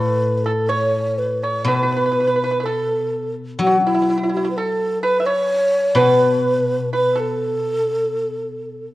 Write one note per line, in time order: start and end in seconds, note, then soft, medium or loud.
0.00 1.66 A2 medium
0.00 0.40 A4 medium
0.00 0.38 B4 medium
0.38 0.46 B4 medium
0.45 0.71 A4 medium
0.45 0.68 A4 medium
0.69 1.38 C#5 medium
0.69 1.19 C#5 medium
1.18 1.44 B4 medium
1.43 1.66 C#5 medium
1.43 1.65 C#5 medium
1.64 4.54 B2 soft
1.64 2.65 B4 medium
1.64 1.73 B4 medium
1.75 1.81 B4 soft
1.83 1.89 B4 medium
1.92 1.95 B4 soft
1.97 2.03 B4 soft
2.06 2.10 B4 soft
2.12 2.18 B4 soft
2.20 2.26 B4 soft
2.27 2.33 B4 soft
2.36 2.42 B4 soft
2.44 2.49 B4 medium
2.51 2.57 B4 soft
2.60 3.34 A4 medium
2.60 2.65 B4 medium
2.65 3.31 A4 medium
3.59 6.44 F#3 medium
3.59 3.79 F#4 medium
3.66 3.86 F#4 medium
3.79 3.84 C#4 soft
3.85 4.28 E4 medium
3.85 3.92 E4 medium
3.94 4.00 E4 soft
4.02 4.07 E4 soft
4.09 4.14 E4 soft
4.17 4.22 E4 soft
4.23 4.28 E4 soft
4.29 4.35 E4 soft
4.29 4.48 F#4 medium
4.37 4.42 E4 soft
4.45 4.50 E4 medium
4.51 4.59 B4 medium
4.57 5.02 A4 medium
4.57 5.00 A4 medium
5.03 5.28 B4 medium
5.03 5.18 B4 medium
5.20 5.26 E5 medium
5.26 5.99 C#5 loud
5.26 5.93 C#5 medium
5.95 8.86 B2 medium
5.95 6.88 B4 medium
5.95 6.93 B4 medium
6.93 7.15 B4 medium
6.93 7.21 B4 medium
7.15 8.82 A4 medium
7.20 8.88 A4 medium